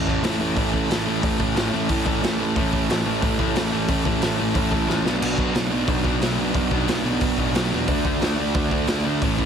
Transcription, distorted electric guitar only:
0.07 A2 E3 A3
0.23 A2 E3 A3
0.40 A2 E3 A3
0.57 A2 E3 A3
0.73 A2 E3 A3
0.90 A2 E3 A3
1.06 A2 E3 A3
1.23 A2 E3 A3
1.40 A2 E3 A3
1.56 A2 E3 A3
1.73 A2 E3 A3
1.90 A2 E3 A3
2.05 A2 E3 A3
2.22 A2 E3 A3
2.39 A2 E3 A3
2.56 A2 E3 A3
2.72 A2 E3 A3
2.89 A2 E3 A3
3.06 A2 E3 A3
3.22 A2 E3 A3
3.39 A2 E3 A3
3.55 A2 E3 A3
3.72 A2 E3 A3
3.89 A2 E3 A3
4.05 A2 E3 A3
4.22 A2 E3 A3
4.37 A2 E3 A3
4.54 A2 E3 A3
4.71 A2 E3 A3
4.88 A2 E3 A3
5.04 B2 F#3 B3
5.20 B2 F#3 B3
5.37 B2 F#3 B3
5.54 B2 F#3 B3
5.71 B2 F#3 B3
5.87 B2 F#3 B3
6.04 B2 F#3 B3
6.22 B2 F#3 B3
6.38 B2 F#3 B3
6.54 B2 F#3 B3
6.70 B2 F#3 B3
6.88 B2 F#3 B3
7.04 B2 F#3 B3
7.21 B2 F#3 B3
7.38 B2 F#3 B3
7.55 B2 F#3 B3
7.72 B2 F#3 B3
7.90 D3 A3 D4
8.06 D3 A3 D4
8.22 D3 A3 D4
8.39 D3 A3 D4
8.55 D3 A3 D4
8.72 D3 A3 D4
8.88 D3 A3 D4
9.05 D3 A3 D4
9.22 A2 E3 A3
9.39 A2 E3 A3

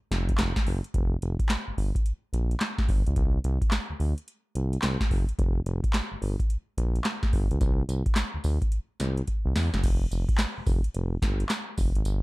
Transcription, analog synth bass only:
0.11 F1
0.39 F1
0.67 F#1
0.94 F1
1.22 F1
1.68 G1
1.78 G1
2.33 A#1
2.89 G1
3.07 C#2
3.17 C2
3.44 C2
3.90 D2
4.00 D2
4.55 C2
4.83 C2
5.11 F#1
5.39 F1
5.66 F1
6.12 G1
6.22 G1
6.77 A#1
7.33 G1
7.51 C#2
7.61 C2
7.89 C2
8.34 D2
8.44 D2
9.00 C2
9.45 C2
9.56 E2
9.73 F#1
9.84 F1
10.11 F1
10.57 F1
10.67 F1
10.95 F1
11.22 G1
11.78 F1
11.95 G#1
12.05 G1

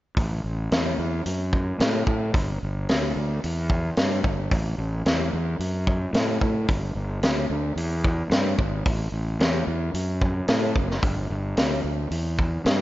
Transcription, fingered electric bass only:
0.17 A1
0.44 A1
0.72 E2
0.99 E2
1.26 F#2
1.80 A2
2.07 A2
2.34 G1
2.63 G1
2.90 D2
3.16 D2
3.44 E2
3.98 G2
4.24 G1
4.51 A1
4.78 A1
5.06 E2
5.33 E2
5.59 F#2
6.13 A2
6.42 A2
6.69 G1
6.95 G1
7.22 D2
7.50 D2
7.76 E2
8.30 G2
8.58 G#1
8.86 A1
9.12 A1
9.39 E2
9.67 E2
9.94 F#2
10.48 A2
10.76 F#1
11.03 G1
11.30 G1
11.57 D2
11.84 D2
12.11 E2
12.65 G2

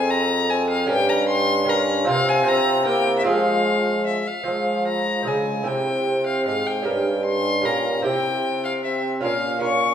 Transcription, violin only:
Already playing: G#5
0.10 A#5
0.50 G#5
0.70 F5
0.89 G5
1.09 A#5
1.29 C6
1.70 A#5
2.09 F5
2.29 G#5
2.48 A#5
2.88 G5
3.18 E5
3.27 F5
4.06 E5
4.27 F5
4.87 A#5
5.28 G#5
5.68 G5
6.26 F5
6.46 F5
6.67 G5
7.25 C6
7.65 A#5
8.05 G5
8.65 F5
8.84 E5
9.23 F5
9.63 C#6

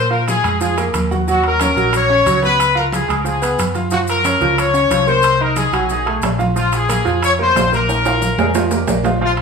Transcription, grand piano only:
0.10 F4 F5
0.44 G#3 G#4
0.61 F3 F4
0.78 A#3 A#4
1.11 F#4 F#5
1.28 F#3 F#4
1.61 C#4 C#5
1.77 F#3 F#4
2.10 C#4 C#5
2.26 F#3 F#4
2.43 B3 B4
2.75 F4 F5
3.08 G#3 G#4
3.25 F3 F4
3.42 B3 B4
3.75 F4 F5
3.91 F3 F4
4.24 C#4 C#5
4.41 F3 F4
4.74 C#4 C#5
4.91 F3 F4
5.07 A#3 A#4
5.41 D#4 D#5
5.73 F#3 F#4
5.91 D#3 D#4
6.06 A3 A4
6.39 F4 F5
6.56 F3 F4
6.89 A#3 A#4
7.05 F3 F4
7.39 A#3 A#4
7.57 F3 F4
7.72 A#3 A#4
8.05 F4 F5
8.39 G#3 G#4
8.55 F3 F4
8.71 A#3 A#4
9.04 F4 F5
9.21 F3 F4 F5

